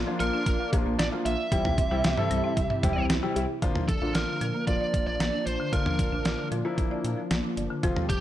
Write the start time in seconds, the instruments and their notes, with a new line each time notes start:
Already playing: analog synth pad A#3 D4 F4
0.07 grand piano F3 A#3 D4 F4, marimba F3
0.20 analog synth bass A#1, marimba A#3, lead electric guitar A#4, closed hi-hat
0.33 marimba D4
0.46 analog synth bass A#1, marimba F4, kick, closed hi-hat
0.60 marimba F5
0.73 analog synth bass A#1, grand piano F3 A#3 D4 F4, marimba F3, kick, closed hi-hat, cowbell
0.86 analog synth bass A#1, marimba A#3
0.99 analog synth bass A#1, marimba D4, lead electric guitar D5, snare, closed hi-hat
1.12 grand piano F3 A#3 D4 F4, marimba F4
1.25 analog synth bass A#1, lead electric guitar E5, marimba F5, closed hi-hat
1.52 analog synth bass C2, analog synth pad C3 C4 E4 G4, marimba E3, grand piano G3 C4 E4 G4, kick, closed hi-hat
1.65 analog synth bass C2, marimba G3, mid tom
1.78 marimba C4, kick, closed hi-hat
1.91 analog synth bass C2, grand piano G3 C4 E4 G4, marimba E4
2.04 analog synth bass C2, marimba E5, snare, closed hi-hat
2.17 marimba E3, grand piano G3 C4 E4 A4, mid tom
2.31 analog synth bass C2, marimba G3, closed hi-hat
2.44 marimba C4
2.57 analog synth bass C2, marimba E4, kick, closed hi-hat
2.70 marimba E5, mid tom
2.83 analog synth bass C2, marimba E3, grand piano G3 C4 E4 G4, kick, closed hi-hat, mid tom
2.97 analog synth bass C2, marimba G3
3.10 analog synth bass C2, marimba C4, snare, closed hi-hat
3.23 grand piano G3 C4 E4 G4, marimba E4
3.36 analog synth bass C2, marimba E5, closed hi-hat, cowbell
3.62 analog synth bass A#1, marimba D3, analog synth pad F3 A#3 D4, grand piano F3 A#3 D4 F4, kick, closed hi-hat
3.75 marimba F3, mid tom
3.89 analog synth bass A#1, lead electric guitar A4, kick, closed hi-hat
4.02 analog synth bass A#1, grand piano F3 A#3 D4 F4, marimba D4
4.15 analog synth bass A#1, lead electric guitar A#4, marimba D5, snare, closed hi-hat
4.28 marimba D3
4.41 analog synth bass A#2, marimba F3, closed hi-hat
4.54 marimba A#3
4.67 analog synth bass A#1, grand piano F3 A#3 D4 F4, marimba D4, lead electric guitar D5, kick, closed hi-hat
4.81 marimba D5
4.94 analog synth bass A#1, kick, closed hi-hat
5.07 analog synth bass A#1, marimba F3, lead electric guitar D5
5.20 analog synth bass A#1, marimba A#3, snare, closed hi-hat
5.33 marimba D4
5.46 analog synth bass A#1, lead electric guitar C5, marimba D5, closed hi-hat
5.60 marimba D3
5.73 analog synth bass A#1, marimba D3, grand piano F3 A#3 D4 F4, lead electric guitar A#4, kick, closed hi-hat
5.86 marimba F3, mid tom
5.99 analog synth bass A#1, kick, closed hi-hat
6.12 analog synth bass A#1, marimba D4
6.25 analog synth bass A#1, marimba D5, snare, closed hi-hat
6.39 marimba D3
6.52 analog synth bass A#2, marimba F3, grand piano D4 F4, closed hi-hat
6.65 grand piano F3 A#3 D4 E4, marimba A#3
6.78 analog synth bass A#1, marimba D4, kick, closed hi-hat
6.91 marimba D5
7.04 analog synth bass A#2, closed hi-hat
7.18 marimba F3
7.31 analog synth bass A#1, marimba A#3, snare, closed hi-hat
7.44 marimba D4
7.57 analog synth bass G1, marimba D5, closed hi-hat
7.70 marimba D3
7.83 analog synth bass F1, grand piano F3 A3 C4 F4, marimba F3, analog synth pad C4 G4 A5, kick, closed hi-hat
7.96 marimba G3, mid tom
8.10 analog synth bass F1, lead electric guitar G4, kick, closed hi-hat